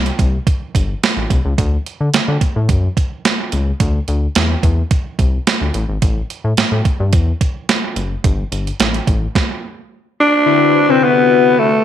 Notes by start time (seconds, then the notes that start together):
Already playing: C2
0.06 closed hi-hat
0.19 C2, kick, closed hi-hat
0.47 kick, closed hi-hat
0.75 G1, kick, closed hi-hat
1.03 snare, closed hi-hat
1.17 A1
1.30 C2, kick, closed hi-hat
1.45 C#2
1.58 D2, kick, closed hi-hat
1.86 closed hi-hat
2.01 D3
2.14 D3, snare, closed hi-hat
2.28 D3
2.41 kick, closed hi-hat
2.56 A2
2.69 F#2, kick, closed hi-hat
2.97 kick, closed hi-hat
3.25 snare, closed hi-hat
3.52 C#2, closed hi-hat
3.80 D2, kick, closed hi-hat
4.08 D2, closed hi-hat
4.35 E2, snare, closed hi-hat
4.63 E2, kick, closed hi-hat
4.91 kick, closed hi-hat
5.19 C2, kick, closed hi-hat
5.47 snare, closed hi-hat
5.61 D2
5.74 A1, closed hi-hat
5.89 G#1
6.02 A1, kick, closed hi-hat
6.30 closed hi-hat
6.44 A2
6.57 A2, snare, closed hi-hat
6.72 A2
6.85 kick, closed hi-hat
7.00 G2
7.13 E2, kick, closed hi-hat
7.41 kick, closed hi-hat
7.69 snare, closed hi-hat
7.96 F#1, closed hi-hat
8.24 G1, kick, closed hi-hat
8.52 G1, closed hi-hat
8.67 closed hi-hat
8.80 A1, snare, closed hi-hat
8.94 closed hi-hat
9.07 A1, kick, closed hi-hat
9.35 kick, snare
10.20 D4
10.46 D3 C4 E4 F#4 B4
10.88 C3 D3 C4 E4 F#4 B4
11.04 B3
11.59 A3